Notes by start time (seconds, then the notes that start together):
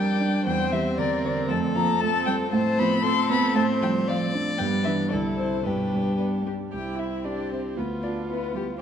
Already playing: F2 G3 D4 A#4 D5 G5
0.20 D4
0.44 E2 G3 C4 C5 G5
0.72 E3 G3 E5
0.97 D3 A#4 D5
1.23 D3 C4 D5
1.48 F2 A3 A4 A5
1.75 F3 A#3 A#5
2.00 A3 C4 A4 A5
2.26 G3 C4 G5
2.51 A2 A3 C4 C5 A5
2.78 F3 B3 B5
3.03 C4 A4 C6
3.28 B3 C4 B5
3.55 A2 A3 C5 A5
3.81 F3 G3 G5
4.07 F3 C5 D5 F5
4.34 D4
4.58 G2 G3 B3 G5
4.84 E3 D4 B4 E5
5.09 C2 D3 E4 A4 D5
5.36 C3 E4 C5
5.40 C5
5.64 G2 B2 D4 G4 B4
5.93 G3
6.16 B3 B4 D5
6.45 G3 D4 G4
6.71 C2 C4 E4 G4 G5
6.97 E4 E5
7.24 D4 G4 D5
7.51 C4 E4 C5
7.76 D2 B3 F4 B4
8.03 D4 F4 D5
8.29 B3 E4 B4
8.54 G3 F4 G4